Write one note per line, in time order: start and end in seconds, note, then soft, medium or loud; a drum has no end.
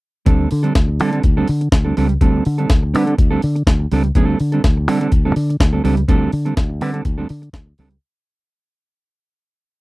0.26 0.45 D2 medium
0.26 0.49 G3 medium
0.26 0.49 C4 medium
0.26 0.49 D4 medium
0.26 0.49 A4 medium
0.26 kick loud
0.26 closed hi-hat medium
0.50 0.70 D3 loud
0.50 muted clean electric guitar stroke soft
0.50 open hi-hat medium
0.63 0.74 G3 medium
0.63 0.74 C4 medium
0.63 0.75 D4 medium
0.63 0.74 A4 medium
0.63 closed hi-hat soft
0.75 1.01 D2 medium
0.75 muted clean electric guitar stroke soft
0.75 kick loud
0.75 snare medium
0.75 closed hi-hat medium
0.88 muted clean electric guitar stroke soft
1.00 1.19 D3 medium
1.00 1.13 G3 medium
1.00 1.13 C4 medium
1.00 1.12 D4 medium
1.00 1.11 A4 medium
1.00 open hi-hat medium
1.13 1.23 G3 soft
1.13 1.23 C4 medium
1.13 1.24 D4 medium
1.13 1.24 A4 medium
1.13 closed hi-hat soft
1.23 1.42 D2 medium
1.23 muted clean electric guitar stroke soft
1.23 kick loud
1.23 closed hi-hat medium
1.37 1.48 G3 medium
1.37 1.48 C4 medium
1.37 1.49 D4 medium
1.37 1.49 A4 medium
1.48 1.67 D3 loud
1.48 muted clean electric guitar stroke soft
1.48 open hi-hat medium
1.61 muted clean electric guitar stroke soft
1.61 closed hi-hat medium
1.72 1.91 D2 medium
1.72 muted clean electric guitar stroke soft
1.72 kick loud
1.72 snare loud
1.72 closed hi-hat medium
1.85 1.96 G3 soft
1.85 1.96 C4 soft
1.85 1.96 D4 medium
1.85 1.96 A4 medium
1.97 2.16 C#2 medium
1.97 2.12 G3 medium
1.97 2.09 C4 medium
1.97 2.09 D4 medium
1.97 2.08 A4 medium
1.97 open hi-hat medium
2.09 muted clean electric guitar stroke soft
2.09 closed hi-hat soft
2.21 2.40 D2 loud
2.21 2.43 G3 medium
2.21 2.43 C4 medium
2.21 2.44 D4 medium
2.21 2.44 A4 medium
2.21 kick loud
2.21 closed hi-hat medium
2.45 2.64 D3 loud
2.45 open hi-hat medium
2.58 2.69 G3 soft
2.58 2.70 C4 soft
2.58 2.70 D4 medium
2.58 2.69 A4 medium
2.58 closed hi-hat soft
2.70 2.95 D2 medium
2.70 muted clean electric guitar stroke soft
2.70 kick loud
2.70 snare medium
2.70 closed hi-hat medium
2.83 muted clean electric guitar stroke soft
2.94 3.13 D3 loud
2.94 3.07 G3 medium
2.94 3.07 C4 medium
2.94 3.06 D4 medium
2.94 3.06 B4 medium
2.94 open hi-hat medium
3.06 3.16 G3 soft
3.06 3.17 C4 soft
3.06 3.17 D4 medium
3.06 3.17 A4 medium
3.06 closed hi-hat soft
3.17 3.37 D2 medium
3.17 muted clean electric guitar stroke soft
3.17 kick loud
3.17 closed hi-hat medium
3.31 3.42 G3 medium
3.31 3.42 C4 medium
3.31 3.43 D4 medium
3.31 3.42 A4 medium
3.42 3.62 D3 medium
3.42 muted clean electric guitar stroke soft
3.42 open hi-hat medium
3.55 muted clean electric guitar stroke soft
3.55 closed hi-hat soft
3.67 3.85 D2 medium
3.67 kick loud
3.67 snare loud
3.67 closed hi-hat medium
3.80 muted clean electric guitar stroke soft
3.92 4.10 C#2 medium
3.92 4.07 G3 medium
3.92 4.05 C4 medium
3.92 4.04 D4 medium
3.92 4.03 A4 medium
3.92 open hi-hat medium
4.04 muted clean electric guitar stroke soft
4.04 closed hi-hat medium
4.15 4.34 D2 loud
4.15 4.38 G3 medium
4.15 4.38 C4 medium
4.15 4.38 D4 medium
4.15 4.38 A4 medium
4.15 kick loud
4.15 closed hi-hat medium
4.40 4.58 D3 medium
4.40 open hi-hat medium
4.52 4.62 G3 medium
4.52 4.63 C4 medium
4.52 4.63 D4 medium
4.52 4.63 A4 medium
4.52 closed hi-hat soft
4.64 4.88 D2 medium
4.64 kick loud
4.64 snare medium
4.64 closed hi-hat medium
4.77 muted clean electric guitar stroke medium
4.88 5.06 D3 medium
4.88 5.01 G3 medium
4.88 5.00 C4 medium
4.88 5.00 D4 medium
4.88 5.00 A4 medium
4.88 open hi-hat medium
5.01 5.12 G3 soft
5.01 5.12 C4 medium
5.01 5.12 D4 medium
5.01 5.12 A4 medium
5.01 closed hi-hat medium
5.12 5.31 D2 medium
5.12 kick medium
5.12 closed hi-hat medium
5.25 5.36 G3 medium
5.25 5.35 C4 medium
5.25 5.36 D4 medium
5.25 5.36 A4 medium
5.36 5.54 D3 loud
5.36 open hi-hat medium
5.50 muted clean electric guitar stroke soft
5.50 closed hi-hat medium
5.60 5.79 D2 loud
5.60 muted clean electric guitar stroke soft
5.60 kick loud
5.60 snare loud
5.60 closed hi-hat medium
5.73 5.83 G3 medium
5.73 5.83 C4 medium
5.73 5.83 D4 medium
5.73 5.84 A4 medium
5.84 6.03 C#2 medium
5.84 6.00 G3 medium
5.84 5.97 C4 medium
5.84 5.97 D4 medium
5.84 5.96 A4 medium
5.84 open hi-hat medium
5.97 muted clean electric guitar stroke soft
5.97 closed hi-hat medium
6.08 6.27 D2 loud
6.08 6.31 G3 medium
6.08 6.31 C4 medium
6.08 6.31 D4 medium
6.08 6.31 A4 loud
6.08 kick loud
6.08 closed hi-hat medium
6.32 6.51 D3 loud
6.32 open hi-hat medium
6.45 6.55 G3 medium
6.45 6.55 C4 medium
6.45 6.55 D4 medium
6.45 6.56 A4 medium
6.45 closed hi-hat soft
6.56 6.82 D2 medium
6.56 muted clean electric guitar stroke soft
6.56 kick loud
6.56 snare medium
6.56 closed hi-hat medium
6.69 muted clean electric guitar stroke soft
6.81 7.00 D3 medium
6.81 6.93 G3 medium
6.81 6.93 C4 medium
6.81 6.92 D4 medium
6.81 6.93 B4 medium
6.81 open hi-hat medium
6.93 7.03 G3 medium
6.93 7.04 C4 medium
6.93 7.04 D4 medium
6.93 7.05 A4 medium
6.93 closed hi-hat soft
7.05 7.24 D2 medium
7.05 muted clean electric guitar stroke soft
7.05 kick loud
7.05 closed hi-hat medium
7.18 7.28 G3 medium
7.18 7.29 C4 medium
7.18 7.28 D4 medium
7.18 7.29 A4 medium
7.29 7.48 D3 loud
7.29 open hi-hat medium
7.42 muted clean electric guitar stroke soft
7.42 closed hi-hat medium
7.53 7.72 D2 medium
7.53 kick loud
7.53 snare loud
7.53 closed hi-hat medium
7.67 muted clean electric guitar stroke soft
7.78 7.97 C#2 loud
7.78 7.94 G3 medium
7.78 7.91 C4 medium
7.78 7.90 D4 medium
7.78 7.90 A4 medium
7.78 open hi-hat medium
7.91 closed hi-hat soft